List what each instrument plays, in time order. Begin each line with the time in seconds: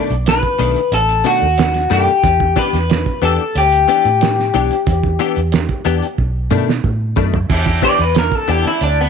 Already playing: clean electric guitar B2 D#3 A3 D4 D5
0.10 fingered electric bass B1, closed hi-hat
0.26 clean electric guitar B4, snare, closed hi-hat
0.43 kick, closed hi-hat
0.59 fingered electric bass B1, clean electric guitar B2 D#3 A3 D4, closed hi-hat
0.76 closed hi-hat
0.92 fingered electric bass A1, clean electric guitar A4, closed hi-hat
1.09 closed hi-hat
1.24 clean electric guitar B2 D#3 A3 D4 F#4, closed hi-hat
1.42 fingered electric bass D#2
1.58 snare, closed hi-hat
1.74 snare, closed hi-hat
1.90 fingered electric bass F#2, clean electric guitar B2 D#3 A3 D4 G4, closed hi-hat
2.24 fingered electric bass E2, kick, closed hi-hat
2.40 kick
2.56 clean electric guitar E3 B3 D4 G4 B4, kick, closed hi-hat
2.73 fingered electric bass E2, snare, closed hi-hat
2.90 snare, closed hi-hat
3.06 kick, closed hi-hat
3.22 fingered electric bass E2, clean electric guitar E3 B3 D4 G4 A4, closed hi-hat
3.55 fingered electric bass D2, clean electric guitar G4, closed hi-hat
3.72 closed hi-hat
3.88 clean electric guitar E3 B3 D4 G4, closed hi-hat
4.05 fingered electric bass A2, closed hi-hat
4.21 snare, closed hi-hat
4.40 snare
4.54 fingered electric bass B1, clean electric guitar E3 B3 D4 G4, closed hi-hat
4.71 closed hi-hat
4.87 fingered electric bass E2, kick, closed hi-hat
5.04 kick
5.19 clean electric guitar E3 B3 D4 G4, closed hi-hat
5.36 fingered electric bass E2, closed hi-hat
5.52 snare, closed hi-hat
5.69 kick, closed hi-hat
5.85 fingered electric bass E2, clean electric guitar E3 B3 D4 G4, closed hi-hat
6.02 closed hi-hat
6.18 fingered electric bass B1, kick
6.51 clean electric guitar B2 D#3 A3 D4, fingered electric bass B2, mid tom
6.69 snare
6.84 fingered electric bass A2, kick
7.16 fingered electric bass F#2, clean electric guitar B2 D#3 A3 D4, kick
7.34 floor tom
7.48 fingered electric bass E2, horn section D4 E4 G4, kick, crash
7.66 kick, closed hi-hat
7.82 clean electric guitar E3 B3 D4 G4 D5, kick, closed hi-hat
7.99 fingered electric bass E2, clean electric guitar B4, closed hi-hat
8.15 clean electric guitar A#4, snare, closed hi-hat
8.31 clean electric guitar A4, kick, closed hi-hat
8.47 fingered electric bass E2, clean electric guitar E3 B3 D4 G4, horn section D4 E4 G4, closed hi-hat
8.64 clean electric guitar E4, snare, closed hi-hat
8.81 fingered electric bass D2, clean electric guitar D4, closed hi-hat
9.01 clean electric guitar B3